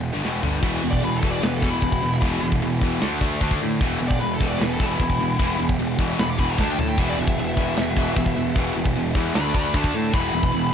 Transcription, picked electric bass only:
0.00 0.13 E1 medium
0.15 0.24 G1 medium
0.24 0.42 E1 loud
0.44 0.62 G1 medium
0.63 0.80 E1 medium
0.83 1.00 E1 medium
1.03 1.20 E1 medium
1.23 1.40 E1 medium
1.43 1.60 E1 medium
1.63 1.80 E1 medium
1.83 2.00 E1 loud
2.03 2.20 E1 medium
2.22 2.39 E1 medium
2.42 2.59 E1 medium
2.62 2.79 E1 medium
2.81 2.99 E1 medium
3.03 3.19 D2 loud
3.21 3.38 D2 medium
3.41 3.58 D2 loud
3.62 3.79 A2 medium
3.81 3.98 E1 medium
4.01 4.18 E1 medium
4.20 4.37 E1 medium
4.40 4.57 E1 medium
4.61 4.78 E1 loud
4.80 4.97 E1 medium
4.99 5.17 E1 loud
5.19 5.36 E1 medium
5.40 5.57 E1 medium
5.59 5.76 E1 medium
5.79 5.96 E1 medium
5.99 6.16 E1 medium
6.19 6.36 E1 loud
6.39 6.56 E1 medium
6.59 6.75 D2 loud
6.78 6.95 A2 medium
6.98 7.15 E1 loud
7.19 7.35 E1 medium
7.39 7.55 E1 medium
7.57 7.74 E1 medium
7.78 7.94 E1 medium
7.97 8.14 E1 medium
8.16 8.33 E1 loud
8.37 8.54 E1 medium
8.56 8.73 E1 loud
8.76 8.93 E1 medium
8.95 9.12 E1 medium
9.15 9.32 E2 medium
9.35 9.52 D2 loud
9.55 9.72 D2 medium
9.74 9.91 D2 loud
9.94 10.11 A2 medium
10.14 10.31 E1 medium
10.33 10.50 E1 medium
10.53 10.71 E1 medium

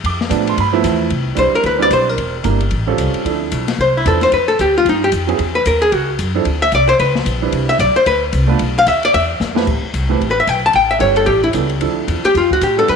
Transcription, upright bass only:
0.04 0.30 F2 medium
0.30 0.56 A2 loud
0.58 0.83 G2 medium
0.84 1.10 E2 loud
1.10 1.36 C2 medium
1.37 1.52 B1 medium
1.53 muted upright bass stroke soft
1.64 1.90 D2 medium
1.91 2.17 B1 medium
2.18 2.44 E1 medium
2.45 2.70 G1 medium
2.72 2.97 A1 medium
2.98 3.13 C2 medium
3.14 muted upright bass stroke soft
3.25 3.51 D2 medium
3.52 3.78 B1 medium
3.78 4.04 C2 medium
4.06 4.31 E2 loud
4.32 4.58 F2 medium
4.59 4.85 D2 medium
4.85 5.11 G2 medium
5.12 5.38 F2 medium
5.39 5.65 E2 medium
5.66 5.91 D#2 medium
5.92 6.18 C#2 medium
6.19 6.45 F#2 medium
6.45 6.71 D2 medium
6.72 6.98 C2 medium
6.99 7.25 C#2 medium
7.25 7.52 A#1 medium
7.53 7.78 C2 medium
7.79 7.94 B1 loud
7.96 muted upright bass stroke soft
8.06 8.32 D2 medium
8.33 8.59 C2 loud
8.60 8.86 B1 medium
8.87 9.13 D#2 medium
9.14 9.39 E2 medium
9.40 9.66 F2 loud
9.68 9.82 A1 medium
9.83 muted upright bass stroke soft
9.94 10.20 C2 medium
10.21 10.47 A1 medium
10.47 10.73 B1 medium
10.74 11.00 A1 medium
11.00 11.26 G1 medium
11.27 11.53 A1 medium
11.54 11.80 C#2 medium
11.81 12.07 D2 medium
12.08 12.23 E2 medium
12.24 muted upright bass stroke soft
12.35 12.61 F2 medium
12.61 12.87 A2 medium
12.88 12.96 G2 medium

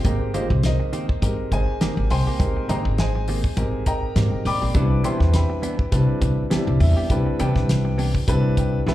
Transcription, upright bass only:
0.05 0.34 G#1 medium
0.34 0.47 G1 medium
0.50 0.74 C2 medium
1.22 1.35 G#2 medium
1.52 1.65 G#1 medium
1.81 muted upright bass stroke soft
1.97 2.08 G#1 medium
2.11 2.24 C2 medium
2.40 2.53 G#1 medium
2.69 2.87 G#2 medium
2.85 3.43 G#1 medium
3.57 4.04 G#1 medium
4.16 4.29 G#2 medium
4.32 muted upright bass stroke soft
4.45 4.58 D#2 medium
4.62 4.73 A#1 medium
4.74 5.04 C2 medium
5.04 5.17 B1 medium
5.20 5.44 E2 medium
5.92 6.05 C3 loud
6.21 6.35 C2 medium
6.52 muted upright bass stroke soft
6.67 6.78 C2 medium
6.80 6.94 E2 medium
7.10 7.23 C2 medium
7.40 7.57 C3 medium
7.56 8.14 C2 medium
8.28 8.75 C2 loud
8.87 8.94 D2 medium

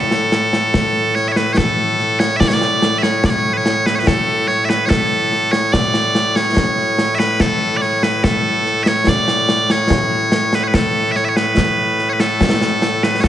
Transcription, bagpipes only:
0.00 13.28 A2 medium
0.00 1.15 A4 medium
1.15 1.28 C#5 loud
1.28 1.37 C#5 medium
1.28 1.32 E5 medium
1.37 1.53 B4 medium
1.53 1.57 C#5 medium
1.57 2.20 A4 medium
2.20 2.36 C#5 loud
2.36 2.48 D5 loud
2.36 2.40 E5 loud
2.48 2.54 C#5 medium
2.54 2.98 D5 loud
2.98 3.02 E5 medium
3.02 3.26 C#5 medium
3.25 3.30 D5 medium
3.30 3.53 C#5 loud
3.53 3.57 B4 medium
3.53 3.86 C#5 loud
3.86 3.95 B4 loud
3.95 4.08 B4 medium
3.95 3.99 C#5 medium
4.08 4.48 A4 medium
4.48 4.65 C#5 loud
4.65 4.69 E5 medium
4.69 4.86 B4 medium
4.86 5.52 A4 loud
4.86 4.89 C#5 loud
5.52 5.73 C#5 loud
5.72 6.36 D5 loud
6.36 7.15 C#5 medium
7.15 7.19 E5 loud
7.19 7.41 B4 loud
7.41 7.77 A4 medium
7.77 7.82 D5 medium
7.82 8.03 C#5 medium
8.03 8.24 B4 medium
8.24 8.83 A4 medium
8.83 8.88 E5 loud
8.88 9.09 C#5 loud
9.09 9.71 D5 loud
9.71 10.55 C#5 medium
10.55 10.64 B4 medium
10.64 10.68 C#5 medium
10.68 10.75 B4 medium
10.75 11.12 A4 medium
11.12 11.16 E5 medium
11.16 11.25 C#5 medium
11.25 11.29 E5 medium
11.29 11.36 C#5 medium
11.36 12.09 B4 medium
12.09 12.20 B4 medium
12.09 12.13 C#5 medium
12.20 13.04 A4 medium
13.04 13.21 B4 medium
13.21 13.28 A4 medium
13.21 13.24 C#5 medium

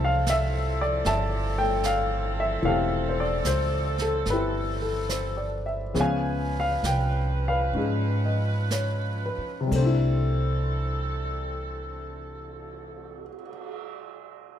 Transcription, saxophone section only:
0.00 5.76 E3 medium
0.00 5.76 C4 medium
0.00 5.76 A4 medium
5.93 9.67 F3 medium
5.93 9.67 C#4 medium
5.93 9.68 B4 medium
9.73 13.30 E3 medium
9.73 13.31 C4 soft
9.73 13.31 A4 medium

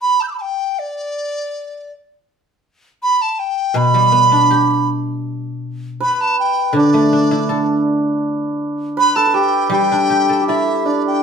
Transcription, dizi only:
0.02 0.22 B5 medium
0.20 0.23 A5 medium
0.20 0.27 G6 soft
0.28 0.34 D6 soft
0.28 0.30 E6 soft
0.34 0.41 A5 soft
0.34 0.38 B5 soft
0.40 0.80 G5 medium
0.79 1.92 D5 medium
3.02 3.23 B5 medium
3.22 3.41 A5 medium
3.39 3.78 G5 medium
3.76 4.89 B5 medium
6.03 6.15 B5 medium
6.15 6.22 B5 medium
6.21 6.39 A5 medium
6.40 6.73 G5 medium
6.77 7.83 D5 medium
8.99 9.17 B5 medium
9.16 9.36 A5 medium
9.34 9.71 G5 medium
9.71 10.44 G5 medium
10.48 10.88 E5 medium
10.86 11.06 D5 medium
11.07 11.23 G5 medium

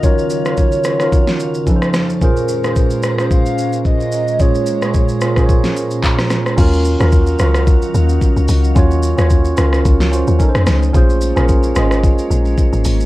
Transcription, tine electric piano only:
0.00 0.02 D#3 medium
0.00 0.36 D#3 loud
0.00 0.03 C#4 medium
0.00 0.37 C#4 medium
0.00 0.04 F4 medium
0.00 0.37 F4 medium
0.00 0.05 F#4 medium
0.00 0.06 A#4 medium
0.05 0.37 F#4 medium
0.05 0.38 A#4 loud
0.44 0.77 D#3 medium
0.44 0.78 C#4 medium
0.44 0.78 F4 medium
0.44 0.79 F#4 medium
0.44 0.79 A#4 medium
0.84 0.97 D#3 medium
0.84 0.97 C#4 medium
0.84 0.98 F4 medium
0.84 0.98 F#4 medium
0.84 0.99 C#5 medium
0.99 1.67 D#3 medium
0.99 1.66 C#4 medium
0.99 1.68 F4 medium
0.99 1.68 F#4 medium
0.99 1.68 A#4 loud
1.66 2.11 F3 medium
1.66 2.12 C#4 medium
1.66 2.12 D#4 medium
1.66 2.13 A4 medium
1.66 1.76 B4 medium
1.76 2.16 C5 loud
2.21 2.54 A#2 medium
2.21 2.55 C#4 medium
2.21 2.55 F4 medium
2.21 2.56 G#4 medium
2.21 2.56 C5 loud
2.63 3.06 A#2 medium
2.63 3.06 C#4 medium
2.63 3.07 F4 medium
2.63 3.07 G#4 medium
2.63 2.71 B4 medium
2.73 3.11 C5 medium
3.17 4.05 A#2 medium
3.17 4.05 C#4 medium
3.17 4.06 F4 medium
3.17 4.06 G#4 medium
3.17 4.07 C5 medium
4.39 4.73 A#2 loud
4.39 4.73 C#4 medium
4.39 4.73 F4 medium
4.39 4.74 G#4 medium
4.39 4.74 C#5 loud
4.81 5.14 A#2 medium
4.81 5.14 C#4 medium
4.81 5.15 F4 medium
4.81 5.15 G#4 medium
4.81 5.16 C#5 medium
5.21 5.33 A#2 medium
5.21 5.34 C#4 medium
5.21 5.34 F4 medium
5.21 5.35 G#4 medium
5.21 5.35 A#4 medium
5.36 6.23 A#2 medium
5.36 6.23 C#4 medium
5.36 6.24 F4 medium
5.36 6.24 G#4 medium
5.36 5.44 C5 medium
5.46 6.28 C#5 loud
6.05 6.55 A#5 medium
6.57 6.91 C#4 loud
6.57 6.91 F4 loud
6.57 6.92 F#4 loud
6.57 6.93 A#4 loud
6.99 7.32 C#4 medium
6.99 7.32 F4 medium
6.99 7.33 F#4 medium
6.99 7.34 A#4 loud
7.39 8.27 C#4 medium
7.39 8.28 F4 medium
7.39 8.28 F#4 medium
7.39 8.29 A#4 loud
8.75 9.09 C#4 loud
8.75 9.10 F4 loud
8.75 9.10 F#4 loud
8.75 9.11 C#5 loud
9.17 9.50 C#4 medium
9.17 9.51 F4 medium
9.17 9.51 F#4 medium
9.17 9.52 C#5 loud
9.57 10.02 C#4 medium
9.57 10.03 F4 medium
9.57 10.03 F#4 medium
9.57 10.04 A#4 loud
10.11 10.37 C#4 medium
10.11 10.40 F4 medium
10.11 10.40 F#4 medium
10.11 10.41 C5 medium
10.39 10.84 C#4 loud
10.39 10.85 D#4 medium
10.39 10.85 A4 medium
10.39 10.48 A#4 medium
10.49 10.89 C5 loud
10.93 11.27 C#4 loud
10.93 11.28 F4 loud
10.93 11.28 G#4 loud
10.93 11.29 C5 loud
11.36 11.68 C#4 medium
11.36 11.69 F4 medium
11.36 11.70 G#4 medium
11.36 11.70 A#4 loud
11.75 12.63 C#4 medium
11.75 12.64 F4 medium
11.75 12.65 G#4 medium
11.75 12.65 D#5 loud

